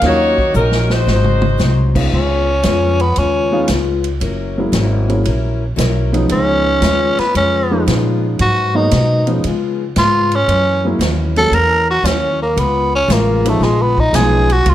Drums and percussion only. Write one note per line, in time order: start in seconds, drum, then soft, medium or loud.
0.01 snare soft
0.01 ride medium
0.38 kick medium
0.54 hi-hat pedal soft
0.72 snare medium
0.90 snare medium
1.07 snare medium
1.24 mid tom medium
1.42 mid tom medium
1.59 snare medium
1.59 hi-hat pedal medium
1.95 kick medium
1.95 crash medium
2.63 snare medium
2.63 hi-hat pedal medium
2.63 ride medium
3.00 ride soft
3.16 ride medium
3.68 snare medium
3.68 hi-hat pedal medium
3.68 ride medium
4.04 ride soft
4.21 ride medium
4.73 snare medium
4.73 hi-hat pedal medium
4.73 ride medium
5.10 ride soft
5.25 ride medium
5.78 snare medium
5.78 hi-hat pedal medium
5.78 ride medium
6.14 ride soft
6.29 ride medium
6.82 snare medium
6.82 hi-hat pedal medium
6.82 ride medium
7.18 snare soft
7.18 ride soft
7.35 ride medium
7.88 snare medium
7.88 hi-hat pedal medium
7.88 ride medium
8.39 ride medium
8.91 snare medium
8.91 hi-hat pedal medium
8.91 ride medium
9.27 ride soft
9.44 ride medium
9.96 snare medium
9.96 hi-hat pedal medium
9.96 ride medium
10.32 ride soft
10.49 ride medium
11.01 snare medium
11.01 hi-hat pedal medium
11.01 ride medium
11.36 ride soft
11.53 ride medium
12.05 snare medium
12.05 hi-hat pedal medium
12.05 ride medium
12.57 ride medium
13.10 snare medium
13.10 hi-hat pedal medium
13.10 ride medium
13.46 ride medium
13.62 snare soft
13.98 kick medium
14.14 snare medium
14.14 hi-hat pedal medium
14.14 ride medium
14.50 ride soft
14.66 ride medium